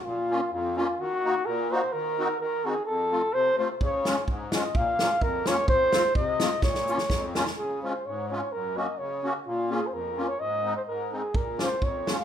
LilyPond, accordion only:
<<
  \new Staff \with { instrumentName = "Accordion" } { \time 2/4 \key bes \minor \tempo 4 = 128 r8 <bes des' f'>8 r8 <bes des' f'>8 | r8 <bes ees' ges'>8 r8 <bes ees' ges'>8 | r8 <c' ees' ges'>8 r8 <c' ees' ges'>8 | r8 <a c' f'>8 r8 <a c' f'>8 |
r8 <aes des' f'>8 r8 <aes des' f'>8 | r8 <bes des' f'>8 r8 <bes des' f'>8 | r8 <a c' f'>8 r8 <a c' f'>8 | r8 <bes des' f'>8 r8 <bes des' f'>8 |
\key des \major r8 <aes des' f'>8 r8 <aes des' f'>8 | r8 <bes des' ges'>8 r8 <bes des' ges'>8 | r8 <bes des' f'>8 r8 <bes des' f'>8 | r8 <aes c' ees'>8 r8 <aes c' ees'>8 |
r8 <bes des' f'>8 r8 <bes des' f'>8 | }
  \new Staff \with { instrumentName = "Accordion" } { \clef bass \time 2/4 \key bes \minor bes,4 f,4 | ees4 bes,4 | ees4 ees4 | f,4 c4 |
des4 aes,4 | bes,4 f,4 | f,4 c4 | bes,4 f,4 |
\key des \major des4 aes,4 | ges,4 des4 | bes,4 f,4 | aes,4 aes,4 |
bes,4 f,4 | }
>>